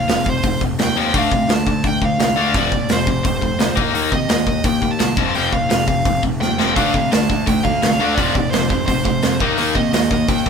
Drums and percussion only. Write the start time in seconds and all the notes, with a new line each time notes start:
0.09 snare, open hi-hat
0.26 kick
0.43 kick, open hi-hat
0.61 kick
0.79 snare, open hi-hat
1.14 kick, open hi-hat
1.32 kick
1.49 snare, open hi-hat
1.67 kick
1.84 kick, open hi-hat
2.02 kick
2.19 snare, open hi-hat
2.54 kick, open hi-hat
2.72 kick
2.89 snare, open hi-hat
3.07 kick
3.25 kick, open hi-hat
3.42 kick
3.59 snare, open hi-hat
3.77 kick
3.95 open hi-hat
4.12 kick
4.29 snare, open hi-hat
4.47 kick
4.64 kick, open hi-hat
4.82 kick
4.99 snare, open hi-hat
5.17 kick
5.34 open hi-hat
5.53 kick
5.70 snare, open hi-hat
5.88 kick
6.05 kick, open hi-hat
6.23 kick
6.42 snare
6.59 snare
6.76 kick, open hi-hat
6.94 kick
7.12 snare, open hi-hat
7.30 kick
7.47 kick, open hi-hat
7.65 kick
7.82 snare, open hi-hat
8.18 kick, open hi-hat
8.35 kick
8.53 snare, open hi-hat
8.70 kick
8.88 kick, open hi-hat
9.05 kick
9.22 snare, open hi-hat
9.40 kick
9.58 open hi-hat
9.75 kick
9.93 snare, open hi-hat
10.11 kick
10.28 kick, open hi-hat
10.46 kick